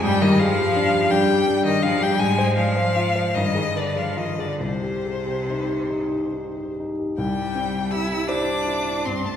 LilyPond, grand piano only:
\new Staff \with { instrumentName = "Grand piano" } { \time 6/8 \key c \minor \tempo 4. = 52 g,16 g'16 aes'16 g'16 d'16 g'16 d'16 g'16 d'16 g'16 d'16 g'16 | aes,16 c''16 d''16 c''16 f'16 c''16 g,16 aes'16 b'16 aes'16 f'16 aes'16 | c,16 g'16 aes'16 g'16 ees'16 g'16 ees'16 g'16 ees'16 g'16 ees'16 g'16 | \key c \major c,8 c'8 g'8 c''8 e'8 g,8 | }